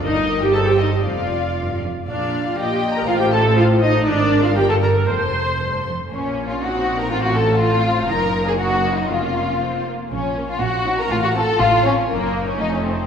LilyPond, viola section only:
\new Staff \with { instrumentName = "Viola section" } { \time 2/4 \key f \mixolydian \tempo 4 = 120 ees'8. g'16 a'16 g'16 ees'8 | f'4. r8 | d'8. f'16 g'8. bes'16 | f'16 g'16 a'8 f'8 ees'8 |
d'8. f'16 g'16 a'16 bes'8 | c''4. r8 | \key bes \minor <bes des'>4 <c' ees'>4 | <c' f'>4 <c' f'>4 |
<bes ees'>4 <bes ees'>4 | <bes des'>4 c'8 bes8 | r8 <bes des'>8 r8 <c' ees'>8 | r8 <c' f'>8 r8 <c' f'>8 |
<bes ees'>4 <a ees'>4 | }